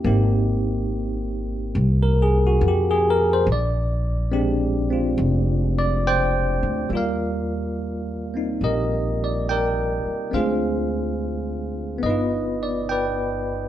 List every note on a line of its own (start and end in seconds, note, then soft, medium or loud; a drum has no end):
0.04 1.71 G#1 medium
0.04 3.47 A#3 medium
0.04 3.47 C4 medium
0.04 3.47 D#4 soft
0.04 2.67 G4 medium
1.75 2.57 C2 medium
2.03 2.32 A#4 medium
2.22 2.41 G#4 medium
2.47 2.60 F#4 medium
2.61 3.43 F2 medium
2.68 2.93 G4 medium
2.91 3.19 G#4 medium
3.10 3.28 A#4 medium
3.33 3.46 C5 medium
3.46 5.14 A#1 loud
3.52 4.90 D5 medium
4.32 6.89 G#3 medium
4.32 4.89 C4 medium
4.32 6.90 D4 medium
4.32 6.90 G4 medium
4.90 6.89 C4 medium
4.90 6.90 F4 medium
5.18 6.59 F1 medium
5.79 6.02 D5 medium
6.07 6.87 C5 medium
6.07 6.87 D5 medium
6.07 6.87 G5 loud
6.63 6.87 D2 medium
6.89 8.57 D#2 medium
6.89 10.32 G3 medium
6.89 8.33 A#3 soft
6.89 10.34 F4 medium
6.95 8.60 A#4 soft
6.95 8.60 D5 soft
6.95 8.34 F5 medium
8.34 10.33 A#3 soft
8.34 10.30 C4 soft
8.34 10.34 D#4 soft
8.61 10.01 A#1 medium
8.61 10.29 G4 medium
8.61 9.50 A#4 medium
8.61 9.17 D#5 medium
9.24 9.47 D5 medium
9.49 10.30 A#4 medium
9.49 10.30 D5 medium
9.49 10.36 G5 medium
10.05 muted upright bass stroke soft
10.31 12.00 D2 medium
10.31 12.03 G#3 soft
10.31 12.03 C4 soft
10.31 12.04 D4 soft
10.31 12.01 G#4 soft
10.31 12.00 C5 medium
10.31 11.74 F5 medium
10.36 12.05 F4 soft
11.98 13.69 B3 medium
12.03 13.69 G1 medium
12.03 13.69 D#4 soft
12.03 12.90 B4 medium
12.03 12.58 D#5 medium
12.10 13.69 F4 medium
12.63 12.87 D5 medium
12.89 13.69 B4 medium
12.89 13.69 D5 medium
12.89 13.69 G5 medium